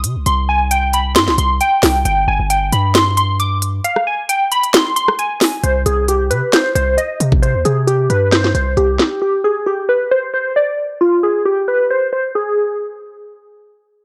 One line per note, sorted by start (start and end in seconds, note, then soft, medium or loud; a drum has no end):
0.04 0.17 C3 loud
0.04 closed hi-hat medium
0.16 0.26 C2 loud
0.26 1.17 C2 loud
0.26 0.45 C6 medium
0.26 closed hi-hat medium
0.49 0.67 G#5 medium
0.71 0.90 G5 medium
0.71 closed hi-hat medium
0.93 1.12 B5 medium
0.93 closed hi-hat medium
1.16 1.29 G2 loud
1.16 1.34 C6 loud
1.16 snare loud
1.16 closed hi-hat medium
1.28 1.38 C2 loud
1.28 snare medium
1.38 1.60 C2 loud
1.38 1.57 C6 medium
1.38 closed hi-hat medium
1.61 2.03 G5 medium
1.61 closed hi-hat medium
1.83 2.04 C2 loud
1.83 snare loud
1.83 open hi-hat medium
2.05 2.27 G1 loud
2.05 2.24 G5 medium
2.05 closed hi-hat medium
2.28 2.39 G1 loud
2.28 2.46 G#5 medium
2.39 2.71 G1 loud
2.50 2.69 G5 medium
2.50 closed hi-hat medium
2.72 3.80 G2 loud
2.72 2.91 B5 medium
2.72 closed hi-hat medium
2.95 3.13 C6 medium
2.95 snare loud
2.95 closed hi-hat medium
3.17 3.36 C6 medium
3.17 closed hi-hat medium
3.40 3.58 D6 medium
3.40 closed hi-hat medium
3.62 closed hi-hat medium
3.84 4.03 F5 medium
3.84 closed hi-hat medium
3.96 cross-stick medium
4.07 4.25 G#5 medium
4.29 4.48 G5 medium
4.29 closed hi-hat medium
4.52 4.70 B5 medium
4.52 closed hi-hat medium
4.63 closed hi-hat medium
4.74 4.93 C6 medium
4.74 snare loud
4.74 closed hi-hat medium
4.96 5.15 C6 medium
4.96 closed hi-hat medium
5.08 cross-stick loud
5.19 5.61 G#5 medium
5.19 closed hi-hat medium
5.41 snare loud
5.41 open hi-hat medium
5.63 5.85 C2 loud
5.63 5.82 C5 medium
5.63 closed hi-hat medium
5.86 6.32 C2 loud
5.86 6.04 G#4 medium
5.86 closed hi-hat medium
6.08 6.27 G4 medium
6.08 closed hi-hat medium
6.31 6.42 C3 loud
6.31 6.49 B4 medium
6.31 closed hi-hat medium
6.53 6.72 C5 medium
6.53 snare loud
6.53 closed hi-hat medium
6.75 6.97 C2 loud
6.75 6.94 C5 medium
6.75 closed hi-hat medium
6.98 7.16 D#5 medium
6.98 closed hi-hat medium
7.20 7.56 C3 loud
7.20 closed hi-hat medium
7.32 kick loud
7.42 7.61 C5 medium
7.42 closed hi-hat medium
7.55 7.64 D#2 loud
7.65 8.08 C3 loud
7.65 7.84 G#4 medium
7.65 closed hi-hat medium
7.87 8.06 G4 medium
7.87 closed hi-hat medium
8.10 8.53 G2 loud
8.10 8.28 B4 medium
8.10 closed hi-hat medium
8.32 8.51 C5 medium
8.32 snare loud
8.32 closed hi-hat medium
8.44 snare medium
8.55 8.76 C2 loud
8.55 8.73 C5 medium
8.55 closed hi-hat medium
8.77 8.98 C2 loud
8.77 9.19 G4 medium
8.77 closed hi-hat medium
8.99 snare loud
8.99 closed hi-hat medium
9.22 9.40 G4 medium
9.44 9.63 G#4 medium
9.66 9.85 G4 medium
9.89 10.07 B4 medium
10.11 10.30 C5 medium
10.34 10.52 C5 medium
10.56 10.75 D5 medium
11.01 11.19 F4 medium
11.23 11.42 G#4 medium
11.45 11.64 G4 medium
11.68 11.86 B4 medium
11.91 12.09 C5 medium
12.13 12.31 C5 medium
12.35 12.77 G#4 medium